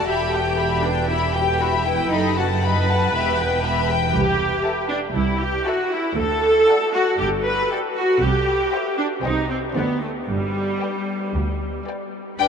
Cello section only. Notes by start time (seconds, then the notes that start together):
0.07 E2
2.10 F#2
3.14 E2
4.14 C2
5.15 C2
6.18 D2
7.20 G2
8.21 C3
9.24 C3
9.75 D3
10.28 G2
11.35 D2
12.39 B4